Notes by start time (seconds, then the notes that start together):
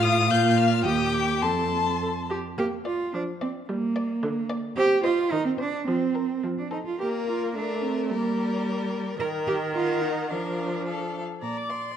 Already playing: A2 F4 F5
0.03 D#6
0.30 A#2 F4 F5 G6
0.58 F6
0.85 D#2 G4 G5 D#6
1.13 D6
1.42 F2 A4 A5 C6
2.01 A4
2.30 G4
2.58 A#3 G4
2.86 F4 D5
3.14 F3 D4
3.41 C4 D5
3.69 G3 A#3
3.96 D5
4.23 D3
4.50 D5
4.77 C4 G4
5.04 F4 C5 D#5
5.32 D#3 D#4
5.46 C4
5.59 D4 C5
5.87 F3 C4
6.15 A#4 C5
6.43 F3
6.58 D4
6.71 D#4 A4 C5
6.86 F4
6.99 A#3 G4 A#4 D5
7.27 F4
7.55 A3 D4 A#4 D5
7.83 C4
8.10 G3 A#3 A#4 D5
9.20 D#3 A#4 G5
9.47 G4
9.75 F4 A#4 F#5
10.02 D#4
10.30 F3 D4 A#4 F5
10.86 A4 F5
11.42 A#2 D5 A#5
11.57 D6
11.70 D5 C6